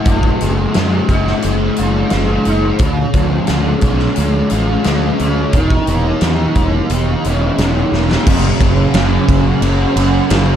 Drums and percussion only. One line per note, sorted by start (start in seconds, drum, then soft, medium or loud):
0.05 kick loud
0.05 closed hi-hat medium
0.23 kick medium
0.41 closed hi-hat medium
0.74 snare loud
0.74 closed hi-hat medium
1.09 kick medium
1.09 closed hi-hat medium
1.27 snare soft
1.42 closed hi-hat medium
1.76 closed hi-hat medium
2.10 snare loud
2.10 closed hi-hat medium
2.45 closed hi-hat medium
2.79 kick loud
2.79 closed hi-hat medium
3.13 kick medium
3.13 closed hi-hat medium
3.47 snare loud
3.47 closed hi-hat medium
3.81 kick medium
3.81 closed hi-hat medium
3.99 snare soft
4.16 closed hi-hat medium
4.50 closed hi-hat medium
4.84 snare loud
4.84 closed hi-hat medium
5.19 closed hi-hat medium
5.53 kick loud
5.53 closed hi-hat medium
5.70 kick medium
5.87 closed hi-hat medium
6.21 snare loud
6.21 closed hi-hat medium
6.55 kick medium
6.55 closed hi-hat medium
6.90 closed hi-hat medium
7.24 closed hi-hat medium
7.58 snare loud
7.58 closed hi-hat medium
7.94 snare medium
8.11 snare medium
8.27 kick loud
8.27 crash loud
8.61 kick medium
8.61 ride medium
8.94 snare loud
8.94 ride loud
9.29 kick loud
9.29 ride medium
9.62 ride loud
9.97 ride medium
10.30 snare loud
10.30 ride loud